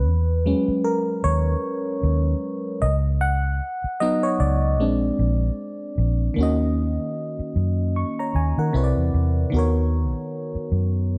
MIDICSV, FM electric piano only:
0, 0, Header, 1, 2, 480
1, 0, Start_track
1, 0, Tempo, 789474
1, 36, Time_signature, 4, 2, 24, 8
1, 6797, End_track
2, 0, Start_track
2, 0, Title_t, "FM electric piano"
2, 0, Program_c, 0, 5
2, 0, Control_c, 0, 64, 127
2, 0, Note_on_c, 0, 71, 78
2, 44, Control_c, 0, 64, 0
2, 143, Control_c, 0, 64, 127
2, 250, Note_off_c, 0, 71, 0
2, 278, Note_on_c, 0, 54, 57
2, 281, Note_on_c, 0, 56, 54
2, 286, Note_on_c, 0, 61, 68
2, 513, Note_on_c, 0, 70, 88
2, 753, Note_on_c, 0, 73, 91
2, 762, Note_off_c, 0, 70, 0
2, 973, Note_off_c, 0, 54, 0
2, 974, Note_off_c, 0, 56, 0
2, 977, Note_off_c, 0, 61, 0
2, 1712, Note_on_c, 0, 75, 101
2, 1724, Control_c, 0, 64, 0
2, 1744, Note_off_c, 0, 73, 0
2, 1798, Note_off_c, 0, 75, 0
2, 1849, Control_c, 0, 64, 127
2, 1952, Note_on_c, 0, 78, 108
2, 2410, Note_off_c, 0, 78, 0
2, 2434, Note_on_c, 0, 75, 106
2, 2438, Note_on_c, 0, 54, 60
2, 2442, Note_on_c, 0, 59, 54
2, 2445, Note_on_c, 0, 63, 67
2, 2573, Note_on_c, 0, 73, 96
2, 2578, Note_off_c, 0, 75, 0
2, 2675, Note_on_c, 0, 74, 92
2, 2678, Note_off_c, 0, 73, 0
2, 2771, Note_off_c, 0, 54, 0
2, 2773, Note_off_c, 0, 59, 0
2, 2775, Note_off_c, 0, 63, 0
2, 2918, Note_on_c, 0, 56, 58
2, 2922, Note_on_c, 0, 60, 55
2, 2924, Control_c, 0, 64, 0
2, 2925, Note_on_c, 0, 62, 62
2, 3025, Control_c, 0, 64, 127
2, 3611, Note_off_c, 0, 74, 0
2, 3853, Note_off_c, 0, 56, 0
2, 3854, Note_off_c, 0, 60, 0
2, 3856, Note_off_c, 0, 62, 0
2, 3856, Note_on_c, 0, 51, 71
2, 3869, Note_on_c, 0, 58, 68
2, 3882, Note_on_c, 0, 61, 66
2, 3884, Control_c, 0, 64, 0
2, 3894, Note_on_c, 0, 66, 65
2, 3907, Note_on_c, 0, 75, 79
2, 4002, Control_c, 0, 64, 127
2, 4833, Note_off_c, 0, 75, 0
2, 4842, Note_on_c, 0, 85, 58
2, 4971, Note_off_c, 0, 85, 0
2, 4982, Note_on_c, 0, 82, 64
2, 4985, Note_on_c, 0, 73, 56
2, 5074, Note_off_c, 0, 82, 0
2, 5076, Note_off_c, 0, 73, 0
2, 5081, Note_on_c, 0, 80, 67
2, 5211, Note_off_c, 0, 80, 0
2, 5220, Note_on_c, 0, 78, 56
2, 5224, Note_on_c, 0, 70, 47
2, 5281, Note_off_c, 0, 51, 0
2, 5288, Note_off_c, 0, 58, 0
2, 5294, Note_off_c, 0, 61, 0
2, 5301, Note_off_c, 0, 66, 0
2, 5308, Note_on_c, 0, 48, 76
2, 5314, Note_on_c, 0, 60, 73
2, 5321, Note_on_c, 0, 64, 66
2, 5323, Control_c, 0, 64, 0
2, 5327, Note_on_c, 0, 71, 65
2, 5334, Note_on_c, 0, 73, 65
2, 5371, Note_off_c, 0, 73, 0
2, 5374, Note_on_c, 0, 74, 82
2, 5445, Control_c, 0, 64, 127
2, 5446, Note_off_c, 0, 78, 0
2, 5448, Note_off_c, 0, 70, 0
2, 5775, Note_on_c, 0, 51, 72
2, 5789, Note_on_c, 0, 59, 70
2, 5792, Note_off_c, 0, 48, 0
2, 5795, Note_off_c, 0, 60, 0
2, 5798, Note_off_c, 0, 64, 0
2, 5802, Note_off_c, 0, 71, 0
2, 5802, Note_on_c, 0, 66, 67
2, 5805, Control_c, 0, 64, 0
2, 5815, Note_on_c, 0, 70, 65
2, 5825, Note_off_c, 0, 74, 0
2, 5828, Note_on_c, 0, 73, 83
2, 5927, Control_c, 0, 64, 127
2, 6797, Note_off_c, 0, 51, 0
2, 6797, Note_off_c, 0, 59, 0
2, 6797, Note_off_c, 0, 66, 0
2, 6797, Note_off_c, 0, 70, 0
2, 6797, Note_off_c, 0, 73, 0
2, 6797, End_track
0, 0, End_of_file